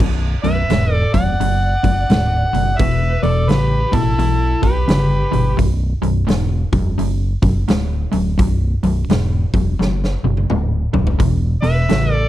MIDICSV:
0, 0, Header, 1, 6, 480
1, 0, Start_track
1, 0, Time_signature, 4, 2, 24, 8
1, 0, Key_signature, 2, "minor"
1, 0, Tempo, 700935
1, 8413, End_track
2, 0, Start_track
2, 0, Title_t, "Harmonica"
2, 0, Program_c, 0, 22
2, 298, Note_on_c, 0, 76, 105
2, 634, Note_off_c, 0, 76, 0
2, 634, Note_on_c, 0, 74, 105
2, 753, Note_off_c, 0, 74, 0
2, 778, Note_on_c, 0, 78, 122
2, 1907, Note_on_c, 0, 76, 100
2, 1917, Note_off_c, 0, 78, 0
2, 2207, Note_off_c, 0, 76, 0
2, 2211, Note_on_c, 0, 74, 87
2, 2391, Note_on_c, 0, 71, 91
2, 2402, Note_off_c, 0, 74, 0
2, 2706, Note_on_c, 0, 69, 85
2, 2716, Note_off_c, 0, 71, 0
2, 3168, Note_off_c, 0, 69, 0
2, 3172, Note_on_c, 0, 71, 68
2, 3803, Note_off_c, 0, 71, 0
2, 7960, Note_on_c, 0, 76, 106
2, 8303, Note_off_c, 0, 76, 0
2, 8303, Note_on_c, 0, 74, 106
2, 8413, Note_off_c, 0, 74, 0
2, 8413, End_track
3, 0, Start_track
3, 0, Title_t, "Lead electric guitar"
3, 0, Program_c, 1, 29
3, 305, Note_on_c, 1, 71, 73
3, 641, Note_off_c, 1, 71, 0
3, 641, Note_on_c, 1, 69, 73
3, 756, Note_off_c, 1, 69, 0
3, 780, Note_on_c, 1, 74, 77
3, 1890, Note_off_c, 1, 74, 0
3, 1914, Note_on_c, 1, 71, 79
3, 2212, Note_on_c, 1, 69, 69
3, 2217, Note_off_c, 1, 71, 0
3, 2404, Note_off_c, 1, 69, 0
3, 2404, Note_on_c, 1, 67, 57
3, 2701, Note_off_c, 1, 67, 0
3, 2701, Note_on_c, 1, 64, 62
3, 3173, Note_off_c, 1, 64, 0
3, 3176, Note_on_c, 1, 67, 64
3, 3805, Note_off_c, 1, 67, 0
3, 7972, Note_on_c, 1, 71, 81
3, 8315, Note_off_c, 1, 71, 0
3, 8315, Note_on_c, 1, 69, 81
3, 8413, Note_off_c, 1, 69, 0
3, 8413, End_track
4, 0, Start_track
4, 0, Title_t, "Overdriven electric guitar"
4, 0, Program_c, 2, 29
4, 0, Note_on_c, 2, 35, 76
4, 2, Note_on_c, 2, 42, 75
4, 271, Note_off_c, 2, 35, 0
4, 272, Note_off_c, 2, 42, 0
4, 302, Note_on_c, 2, 35, 67
4, 306, Note_on_c, 2, 42, 86
4, 462, Note_off_c, 2, 35, 0
4, 464, Note_off_c, 2, 42, 0
4, 482, Note_on_c, 2, 35, 78
4, 484, Note_on_c, 2, 44, 84
4, 752, Note_off_c, 2, 35, 0
4, 754, Note_off_c, 2, 44, 0
4, 782, Note_on_c, 2, 35, 72
4, 785, Note_on_c, 2, 42, 71
4, 942, Note_off_c, 2, 35, 0
4, 943, Note_off_c, 2, 42, 0
4, 960, Note_on_c, 2, 35, 69
4, 965, Note_on_c, 2, 42, 87
4, 1231, Note_off_c, 2, 35, 0
4, 1233, Note_off_c, 2, 42, 0
4, 1259, Note_on_c, 2, 35, 58
4, 1263, Note_on_c, 2, 42, 75
4, 1420, Note_off_c, 2, 35, 0
4, 1422, Note_off_c, 2, 42, 0
4, 1439, Note_on_c, 2, 35, 66
4, 1443, Note_on_c, 2, 44, 82
4, 1710, Note_off_c, 2, 35, 0
4, 1712, Note_off_c, 2, 44, 0
4, 1734, Note_on_c, 2, 35, 75
4, 1739, Note_on_c, 2, 42, 81
4, 1897, Note_off_c, 2, 35, 0
4, 1900, Note_off_c, 2, 42, 0
4, 1914, Note_on_c, 2, 40, 68
4, 1919, Note_on_c, 2, 47, 82
4, 2187, Note_off_c, 2, 40, 0
4, 2189, Note_off_c, 2, 47, 0
4, 2212, Note_on_c, 2, 40, 69
4, 2216, Note_on_c, 2, 47, 83
4, 2375, Note_off_c, 2, 40, 0
4, 2377, Note_off_c, 2, 47, 0
4, 2391, Note_on_c, 2, 49, 92
4, 2392, Note_on_c, 2, 40, 76
4, 2665, Note_off_c, 2, 40, 0
4, 2665, Note_off_c, 2, 49, 0
4, 2684, Note_on_c, 2, 40, 71
4, 2691, Note_on_c, 2, 47, 77
4, 2850, Note_off_c, 2, 40, 0
4, 2854, Note_off_c, 2, 47, 0
4, 2867, Note_on_c, 2, 47, 78
4, 2869, Note_on_c, 2, 40, 69
4, 3142, Note_off_c, 2, 47, 0
4, 3143, Note_off_c, 2, 40, 0
4, 3165, Note_on_c, 2, 40, 65
4, 3171, Note_on_c, 2, 47, 72
4, 3331, Note_off_c, 2, 40, 0
4, 3333, Note_off_c, 2, 47, 0
4, 3342, Note_on_c, 2, 40, 68
4, 3347, Note_on_c, 2, 49, 73
4, 3618, Note_off_c, 2, 40, 0
4, 3621, Note_off_c, 2, 49, 0
4, 3642, Note_on_c, 2, 40, 77
4, 3645, Note_on_c, 2, 47, 82
4, 3808, Note_off_c, 2, 40, 0
4, 3810, Note_off_c, 2, 47, 0
4, 3816, Note_on_c, 2, 42, 90
4, 3817, Note_on_c, 2, 35, 78
4, 4095, Note_off_c, 2, 42, 0
4, 4096, Note_off_c, 2, 35, 0
4, 4123, Note_on_c, 2, 35, 67
4, 4127, Note_on_c, 2, 42, 83
4, 4287, Note_off_c, 2, 35, 0
4, 4290, Note_off_c, 2, 42, 0
4, 4295, Note_on_c, 2, 35, 84
4, 4301, Note_on_c, 2, 44, 98
4, 4574, Note_off_c, 2, 35, 0
4, 4577, Note_off_c, 2, 44, 0
4, 4606, Note_on_c, 2, 35, 75
4, 4608, Note_on_c, 2, 42, 90
4, 4769, Note_off_c, 2, 35, 0
4, 4770, Note_off_c, 2, 42, 0
4, 4780, Note_on_c, 2, 35, 80
4, 4780, Note_on_c, 2, 42, 87
4, 5056, Note_off_c, 2, 35, 0
4, 5056, Note_off_c, 2, 42, 0
4, 5084, Note_on_c, 2, 35, 54
4, 5089, Note_on_c, 2, 42, 69
4, 5248, Note_off_c, 2, 35, 0
4, 5250, Note_off_c, 2, 42, 0
4, 5263, Note_on_c, 2, 35, 65
4, 5266, Note_on_c, 2, 44, 84
4, 5538, Note_off_c, 2, 35, 0
4, 5539, Note_off_c, 2, 44, 0
4, 5562, Note_on_c, 2, 35, 78
4, 5568, Note_on_c, 2, 42, 80
4, 5727, Note_off_c, 2, 35, 0
4, 5730, Note_off_c, 2, 42, 0
4, 5737, Note_on_c, 2, 35, 78
4, 5744, Note_on_c, 2, 42, 80
4, 6015, Note_off_c, 2, 35, 0
4, 6018, Note_off_c, 2, 42, 0
4, 6052, Note_on_c, 2, 35, 75
4, 6059, Note_on_c, 2, 42, 69
4, 6212, Note_off_c, 2, 35, 0
4, 6216, Note_off_c, 2, 42, 0
4, 6232, Note_on_c, 2, 35, 78
4, 6233, Note_on_c, 2, 44, 89
4, 6503, Note_off_c, 2, 35, 0
4, 6503, Note_off_c, 2, 44, 0
4, 6533, Note_on_c, 2, 35, 68
4, 6538, Note_on_c, 2, 42, 70
4, 6693, Note_off_c, 2, 35, 0
4, 6695, Note_off_c, 2, 42, 0
4, 6707, Note_on_c, 2, 35, 71
4, 6707, Note_on_c, 2, 42, 75
4, 6980, Note_off_c, 2, 35, 0
4, 6980, Note_off_c, 2, 42, 0
4, 7014, Note_on_c, 2, 35, 64
4, 7015, Note_on_c, 2, 42, 64
4, 7174, Note_off_c, 2, 35, 0
4, 7174, Note_off_c, 2, 42, 0
4, 7192, Note_on_c, 2, 35, 65
4, 7198, Note_on_c, 2, 44, 80
4, 7464, Note_off_c, 2, 35, 0
4, 7467, Note_off_c, 2, 44, 0
4, 7491, Note_on_c, 2, 35, 64
4, 7492, Note_on_c, 2, 42, 87
4, 7653, Note_off_c, 2, 35, 0
4, 7654, Note_off_c, 2, 42, 0
4, 7662, Note_on_c, 2, 40, 75
4, 7669, Note_on_c, 2, 47, 81
4, 7940, Note_off_c, 2, 40, 0
4, 7943, Note_off_c, 2, 47, 0
4, 7961, Note_on_c, 2, 40, 63
4, 7966, Note_on_c, 2, 47, 72
4, 8129, Note_off_c, 2, 40, 0
4, 8131, Note_off_c, 2, 47, 0
4, 8144, Note_on_c, 2, 40, 84
4, 8145, Note_on_c, 2, 49, 92
4, 8413, Note_off_c, 2, 40, 0
4, 8413, Note_off_c, 2, 49, 0
4, 8413, End_track
5, 0, Start_track
5, 0, Title_t, "Fingered electric bass"
5, 0, Program_c, 3, 33
5, 0, Note_on_c, 3, 23, 97
5, 228, Note_off_c, 3, 23, 0
5, 298, Note_on_c, 3, 23, 73
5, 434, Note_off_c, 3, 23, 0
5, 474, Note_on_c, 3, 28, 78
5, 704, Note_off_c, 3, 28, 0
5, 779, Note_on_c, 3, 28, 76
5, 914, Note_off_c, 3, 28, 0
5, 956, Note_on_c, 3, 30, 88
5, 1185, Note_off_c, 3, 30, 0
5, 1258, Note_on_c, 3, 30, 71
5, 1394, Note_off_c, 3, 30, 0
5, 1434, Note_on_c, 3, 26, 64
5, 1664, Note_off_c, 3, 26, 0
5, 1732, Note_on_c, 3, 30, 83
5, 1870, Note_off_c, 3, 30, 0
5, 1914, Note_on_c, 3, 28, 97
5, 2143, Note_off_c, 3, 28, 0
5, 2209, Note_on_c, 3, 28, 83
5, 2347, Note_off_c, 3, 28, 0
5, 2385, Note_on_c, 3, 33, 87
5, 2617, Note_off_c, 3, 33, 0
5, 2688, Note_on_c, 3, 33, 82
5, 2826, Note_off_c, 3, 33, 0
5, 2859, Note_on_c, 3, 35, 85
5, 3093, Note_off_c, 3, 35, 0
5, 3166, Note_on_c, 3, 35, 75
5, 3304, Note_off_c, 3, 35, 0
5, 3340, Note_on_c, 3, 31, 68
5, 3573, Note_off_c, 3, 31, 0
5, 3648, Note_on_c, 3, 31, 87
5, 3785, Note_off_c, 3, 31, 0
5, 3825, Note_on_c, 3, 23, 105
5, 4056, Note_off_c, 3, 23, 0
5, 4122, Note_on_c, 3, 23, 83
5, 4261, Note_off_c, 3, 23, 0
5, 4304, Note_on_c, 3, 28, 86
5, 4535, Note_off_c, 3, 28, 0
5, 4608, Note_on_c, 3, 28, 79
5, 4744, Note_off_c, 3, 28, 0
5, 4784, Note_on_c, 3, 30, 87
5, 5014, Note_off_c, 3, 30, 0
5, 5085, Note_on_c, 3, 30, 68
5, 5222, Note_off_c, 3, 30, 0
5, 5268, Note_on_c, 3, 26, 65
5, 5497, Note_off_c, 3, 26, 0
5, 5571, Note_on_c, 3, 26, 87
5, 5706, Note_off_c, 3, 26, 0
5, 5749, Note_on_c, 3, 23, 92
5, 5977, Note_off_c, 3, 23, 0
5, 6048, Note_on_c, 3, 23, 79
5, 6184, Note_off_c, 3, 23, 0
5, 6224, Note_on_c, 3, 28, 86
5, 6455, Note_off_c, 3, 28, 0
5, 6526, Note_on_c, 3, 28, 81
5, 6663, Note_off_c, 3, 28, 0
5, 6702, Note_on_c, 3, 30, 88
5, 6934, Note_off_c, 3, 30, 0
5, 7009, Note_on_c, 3, 30, 76
5, 7145, Note_off_c, 3, 30, 0
5, 7191, Note_on_c, 3, 26, 65
5, 7420, Note_off_c, 3, 26, 0
5, 7492, Note_on_c, 3, 27, 83
5, 7628, Note_off_c, 3, 27, 0
5, 7670, Note_on_c, 3, 28, 101
5, 7900, Note_off_c, 3, 28, 0
5, 7967, Note_on_c, 3, 28, 70
5, 8105, Note_off_c, 3, 28, 0
5, 8152, Note_on_c, 3, 33, 79
5, 8382, Note_off_c, 3, 33, 0
5, 8413, End_track
6, 0, Start_track
6, 0, Title_t, "Drums"
6, 0, Note_on_c, 9, 36, 98
6, 1, Note_on_c, 9, 49, 88
6, 67, Note_off_c, 9, 36, 0
6, 70, Note_off_c, 9, 49, 0
6, 303, Note_on_c, 9, 46, 44
6, 371, Note_off_c, 9, 46, 0
6, 478, Note_on_c, 9, 46, 61
6, 490, Note_on_c, 9, 38, 91
6, 546, Note_off_c, 9, 46, 0
6, 558, Note_off_c, 9, 38, 0
6, 781, Note_on_c, 9, 36, 70
6, 781, Note_on_c, 9, 46, 53
6, 849, Note_off_c, 9, 36, 0
6, 849, Note_off_c, 9, 46, 0
6, 963, Note_on_c, 9, 46, 64
6, 1032, Note_off_c, 9, 46, 0
6, 1260, Note_on_c, 9, 36, 68
6, 1262, Note_on_c, 9, 46, 49
6, 1328, Note_off_c, 9, 36, 0
6, 1330, Note_off_c, 9, 46, 0
6, 1436, Note_on_c, 9, 46, 67
6, 1448, Note_on_c, 9, 38, 108
6, 1505, Note_off_c, 9, 46, 0
6, 1516, Note_off_c, 9, 38, 0
6, 1742, Note_on_c, 9, 46, 52
6, 1811, Note_off_c, 9, 46, 0
6, 1914, Note_on_c, 9, 36, 95
6, 1914, Note_on_c, 9, 46, 55
6, 1982, Note_off_c, 9, 36, 0
6, 1983, Note_off_c, 9, 46, 0
6, 2214, Note_on_c, 9, 46, 43
6, 2282, Note_off_c, 9, 46, 0
6, 2389, Note_on_c, 9, 46, 55
6, 2400, Note_on_c, 9, 38, 97
6, 2457, Note_off_c, 9, 46, 0
6, 2469, Note_off_c, 9, 38, 0
6, 2692, Note_on_c, 9, 36, 88
6, 2692, Note_on_c, 9, 46, 46
6, 2760, Note_off_c, 9, 36, 0
6, 2760, Note_off_c, 9, 46, 0
6, 2871, Note_on_c, 9, 46, 54
6, 2939, Note_off_c, 9, 46, 0
6, 3170, Note_on_c, 9, 36, 74
6, 3171, Note_on_c, 9, 46, 43
6, 3239, Note_off_c, 9, 36, 0
6, 3239, Note_off_c, 9, 46, 0
6, 3345, Note_on_c, 9, 46, 55
6, 3357, Note_on_c, 9, 38, 99
6, 3414, Note_off_c, 9, 46, 0
6, 3425, Note_off_c, 9, 38, 0
6, 3651, Note_on_c, 9, 46, 45
6, 3720, Note_off_c, 9, 46, 0
6, 3826, Note_on_c, 9, 46, 58
6, 3827, Note_on_c, 9, 36, 87
6, 3895, Note_off_c, 9, 36, 0
6, 3895, Note_off_c, 9, 46, 0
6, 4130, Note_on_c, 9, 46, 47
6, 4199, Note_off_c, 9, 46, 0
6, 4303, Note_on_c, 9, 46, 59
6, 4314, Note_on_c, 9, 38, 86
6, 4371, Note_off_c, 9, 46, 0
6, 4383, Note_off_c, 9, 38, 0
6, 4607, Note_on_c, 9, 36, 79
6, 4607, Note_on_c, 9, 46, 47
6, 4675, Note_off_c, 9, 36, 0
6, 4676, Note_off_c, 9, 46, 0
6, 4786, Note_on_c, 9, 46, 69
6, 4854, Note_off_c, 9, 46, 0
6, 5083, Note_on_c, 9, 46, 52
6, 5086, Note_on_c, 9, 36, 83
6, 5151, Note_off_c, 9, 46, 0
6, 5154, Note_off_c, 9, 36, 0
6, 5262, Note_on_c, 9, 46, 68
6, 5274, Note_on_c, 9, 38, 109
6, 5330, Note_off_c, 9, 46, 0
6, 5342, Note_off_c, 9, 38, 0
6, 5564, Note_on_c, 9, 46, 52
6, 5632, Note_off_c, 9, 46, 0
6, 5744, Note_on_c, 9, 46, 61
6, 5747, Note_on_c, 9, 36, 89
6, 5813, Note_off_c, 9, 46, 0
6, 5815, Note_off_c, 9, 36, 0
6, 6049, Note_on_c, 9, 46, 49
6, 6117, Note_off_c, 9, 46, 0
6, 6229, Note_on_c, 9, 46, 55
6, 6240, Note_on_c, 9, 38, 100
6, 6297, Note_off_c, 9, 46, 0
6, 6309, Note_off_c, 9, 38, 0
6, 6529, Note_on_c, 9, 46, 44
6, 6531, Note_on_c, 9, 36, 83
6, 6597, Note_off_c, 9, 46, 0
6, 6599, Note_off_c, 9, 36, 0
6, 6721, Note_on_c, 9, 38, 56
6, 6789, Note_off_c, 9, 38, 0
6, 6874, Note_on_c, 9, 38, 54
6, 6942, Note_off_c, 9, 38, 0
6, 7102, Note_on_c, 9, 48, 50
6, 7171, Note_off_c, 9, 48, 0
6, 7189, Note_on_c, 9, 47, 69
6, 7258, Note_off_c, 9, 47, 0
6, 7490, Note_on_c, 9, 43, 73
6, 7558, Note_off_c, 9, 43, 0
6, 7579, Note_on_c, 9, 43, 87
6, 7648, Note_off_c, 9, 43, 0
6, 7667, Note_on_c, 9, 46, 59
6, 7670, Note_on_c, 9, 36, 86
6, 7736, Note_off_c, 9, 46, 0
6, 7738, Note_off_c, 9, 36, 0
6, 7967, Note_on_c, 9, 46, 45
6, 8035, Note_off_c, 9, 46, 0
6, 8145, Note_on_c, 9, 46, 55
6, 8157, Note_on_c, 9, 38, 96
6, 8214, Note_off_c, 9, 46, 0
6, 8225, Note_off_c, 9, 38, 0
6, 8413, End_track
0, 0, End_of_file